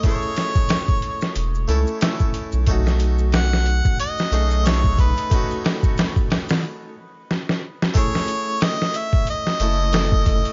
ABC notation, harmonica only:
X:1
M:4/4
L:1/8
Q:"Swing 16ths" 1/4=91
K:F#dor
V:1 name="Harmonica"
c4 z4 | z2 f2 d2 c B- | B z6 z | c2 d e d4 |]